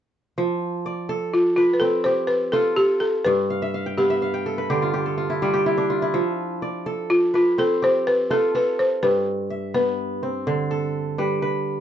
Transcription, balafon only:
1.34 1.55 F4 medium
1.56 1.76 F4 medium
1.74 1.81 B4 medium
1.80 2.05 A4 medium
2.04 2.30 C5 medium
2.27 2.53 B4 medium
2.52 2.78 A4 medium
2.77 2.88 G4 medium
3.00 3.26 A4 medium
3.25 3.99 B4 medium
3.98 4.90 G4 medium
7.10 7.34 F4 medium
7.35 7.46 F4 medium
7.59 7.81 A4 loud
7.84 8.08 C5 medium
8.07 8.18 B4 medium
8.31 8.56 A4 medium
8.55 8.80 B4 medium
8.79 9.04 C5 medium
9.03 9.73 B4 medium
9.75 10.66 B4 medium

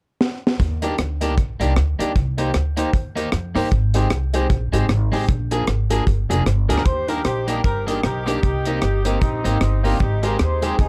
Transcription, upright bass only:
0.60 0.93 D#2 loud
0.99 1.38 D2 medium
1.38 1.57 A#1 medium
1.60 1.74 C2 loud
1.77 1.96 D2 loud
2.00 2.13 D#2 medium
2.16 2.49 C2 medium
2.55 2.88 D2 medium
2.93 3.27 D#2 medium
3.33 3.52 F2 loud
3.55 3.69 G1 medium
3.72 4.05 G#1 loud
4.11 4.44 C2 medium
4.50 4.70 A#1 medium
4.73 4.87 G#1 medium
4.89 5.08 G#1 loud
5.12 5.26 A1 medium
5.29 5.62 A#1 loud
5.68 6.01 G#1 medium
6.07 6.27 G1 medium
6.30 6.44 F1 loud
6.46 6.66 G1 loud
6.70 6.84 D2 loud
6.86 7.19 D#2 loud
7.25 7.59 A#1 medium
7.64 7.98 G1 medium
8.04 8.37 B1 medium
8.43 8.77 C2 medium
8.83 9.16 G1 medium
9.22 9.41 A#1 medium
9.45 9.59 G#1 medium
9.62 9.95 G1 medium
10.00 10.34 G#1 loud
10.40 10.73 D#2 medium
10.79 10.88 D2 medium

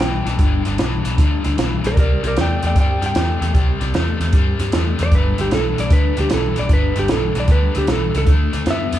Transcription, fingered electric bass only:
0.00 0.20 B1 medium
0.26 0.36 B1 medium
0.39 0.60 G1 loud
0.66 0.76 G1 medium
0.80 1.00 B1 medium
1.06 1.16 B1 medium
1.18 1.38 D2 medium
1.46 1.55 D2 medium
1.59 1.79 B1 medium
1.85 1.94 B1 medium
1.97 2.17 C2 medium
2.24 2.33 C2 medium
2.38 2.57 E2 medium
2.63 2.73 E2 medium
2.76 2.96 G2 medium
3.02 3.12 G2 medium
3.15 3.35 E2 medium
3.41 3.51 E2 medium
3.55 3.75 C2 medium
3.81 3.91 C2 medium
3.94 4.14 E2 medium
4.20 4.30 E2 medium
4.33 4.53 G2 medium
4.60 4.70 G2 medium
4.73 4.93 E2 medium
5.00 5.09 E2 medium
5.12 5.32 G1 medium
5.38 5.48 G1 medium
5.52 5.72 B1 medium
5.78 5.88 B1 medium
5.91 6.11 D2 medium
6.18 6.28 D2 medium
6.32 6.51 B1 medium
6.58 6.67 B1 medium
6.69 6.90 G1 medium
6.97 7.06 G1 medium
7.36 7.46 B1 medium
7.48 7.69 D2 loud
7.76 7.85 D2 medium
7.88 8.08 B1 medium
8.15 8.25 C#2 medium
8.27 8.47 D2 medium
8.54 8.64 D2 medium
8.66 8.87 F#2 medium
8.93 8.99 F#2 medium

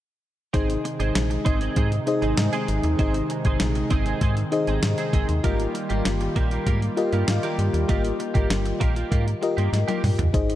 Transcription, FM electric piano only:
0.54 1.61 D#4 medium
0.54 1.62 G#4 medium
0.54 1.62 C5 medium
0.54 1.62 D#5 medium
2.07 2.88 D#4 medium
2.07 2.88 G#4 medium
2.07 2.88 C5 medium
2.07 2.88 D#5 medium
2.99 4.07 D#4 medium
2.99 4.07 G#4 medium
2.99 4.07 C5 medium
2.99 4.07 D#5 medium
4.52 5.33 D#4 medium
4.52 5.33 G#4 medium
4.52 5.33 C5 medium
4.52 5.33 D#5 medium
5.44 6.51 F4 medium
5.44 6.52 G4 medium
5.44 6.52 A#4 medium
5.44 6.52 D#5 medium
6.97 7.78 F4 medium
6.97 7.78 G4 medium
6.97 7.78 A#4 medium
6.97 7.78 D#5 medium
7.89 8.96 F4 medium
7.89 8.96 G4 medium
7.89 8.97 A#4 medium
7.89 8.97 D#5 medium
9.42 10.23 F4 medium
9.42 10.23 G4 medium
9.42 10.23 A#4 medium
9.42 10.23 D#5 medium
10.33 10.55 D#4 medium
10.33 10.55 G#4 medium
10.33 10.55 C5 medium
10.33 10.55 D#5 medium

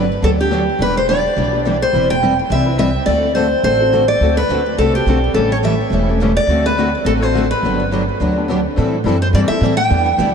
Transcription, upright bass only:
0.00 0.11 G1 medium
0.22 0.68 D2 medium
0.79 1.24 E1 medium
1.36 1.82 B1 medium
1.93 2.38 E1 medium
2.50 2.95 C2 medium
3.07 3.52 D2 medium
3.63 4.09 A1 medium
4.20 4.43 D2 medium
4.49 4.73 D2 medium
4.78 5.02 C2 medium
5.06 5.30 B1 medium
5.34 5.80 A1 medium
5.90 6.36 E1 medium
6.47 6.93 D2 medium
7.05 7.51 A1 medium
7.63 8.08 G1 medium
8.20 8.65 D2 medium
8.77 9.03 A2 medium
9.04 9.32 F#2 medium
9.33 9.48 G2 medium
9.49 muted upright bass stroke soft
9.61 9.89 A2 medium
9.90 10.17 E2 medium
10.18 10.35 D2 medium

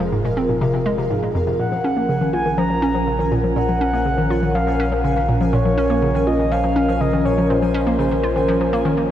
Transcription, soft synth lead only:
1.59 2.29 F#5 medium
2.33 2.56 G#5 loud
2.58 3.28 A#5 loud
3.56 4.56 F#5 loud
4.55 5.28 F5 loud
5.54 6.29 C#5 loud
6.27 6.53 D#5 loud
6.52 7.02 F5 loud
7.01 7.27 D#5 loud
7.25 7.51 C#5 medium
7.50 7.99 C5 medium
7.99 8.93 C5 medium

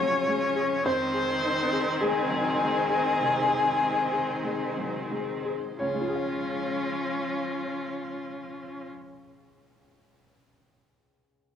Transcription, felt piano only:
0.00 0.81 F2 medium
0.00 0.28 F#3 medium
0.00 0.27 G#3 medium
0.00 0.89 C#4 medium
0.00 0.56 G#4 medium
0.00 0.81 C#5 loud
0.27 0.74 G#3 medium
0.56 0.85 G#4 medium
0.85 3.16 F2 loud
0.85 1.98 C5 loud
1.13 1.60 G#4 medium
1.42 1.89 D#4 medium
1.72 1.99 G#4 medium
2.01 2.49 G#3 medium
2.01 2.88 G#4 loud
2.29 2.60 F#3 medium
2.62 3.09 G#3 medium
2.90 3.39 G#4 medium
3.20 3.69 C3 medium
3.48 4.00 G#4 medium
3.81 4.32 D#4 medium
4.12 4.65 G#4 medium
4.43 4.98 G#3 medium
4.77 5.12 F#3 medium
5.11 5.65 G#3 medium
5.45 5.79 G#4 medium
5.79 8.91 C#2 medium
5.79 8.90 C#5 medium
5.87 8.98 C#3 medium
5.94 9.05 G#3 medium
6.01 9.12 F4 medium
6.08 9.19 G#4 medium
6.15 9.26 F5 medium

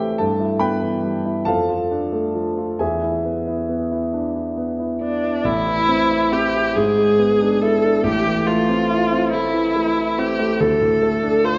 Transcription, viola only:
5.03 5.47 D4 medium
5.45 6.34 E4 loud
6.32 6.78 G4 medium
6.76 7.63 G#4 medium
7.61 8.05 A4 medium
8.04 8.49 G4 medium
8.47 9.31 F4 medium
9.32 10.21 E4 medium
10.19 10.62 G4 medium
10.61 11.46 A4 medium
11.45 11.58 C5 medium

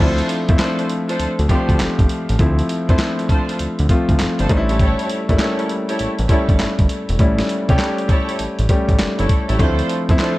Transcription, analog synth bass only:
0.00 0.22 D2 loud
0.49 0.57 F2 medium
1.20 1.27 D2 soft
1.39 1.47 D2 medium
1.69 1.77 D2 medium
1.80 1.88 G1 soft
1.99 2.07 G1 loud
2.30 2.37 A1 medium
2.39 2.62 D2 loud
2.89 2.97 F2 medium
3.60 3.68 D2 soft
3.80 3.87 D2 medium
4.09 4.17 D2 medium
4.20 4.28 G1 soft
4.40 4.47 G1 medium
4.50 4.95 A1 loud
5.30 5.37 G1 medium
6.00 6.08 A1 soft
6.19 6.27 A1 medium
6.49 6.57 G1 medium
6.60 6.68 G1 soft
6.79 6.87 G1 loud
7.09 7.17 E1 medium
7.20 7.42 A1 medium
7.69 7.77 C2 medium
8.40 8.47 A1 soft
8.59 8.67 A1 medium
8.89 8.97 A1 medium
9.00 9.07 G1 soft
9.19 9.27 G1 medium
9.49 9.57 A1 medium
9.60 9.82 D2 medium
10.09 10.17 F2 medium

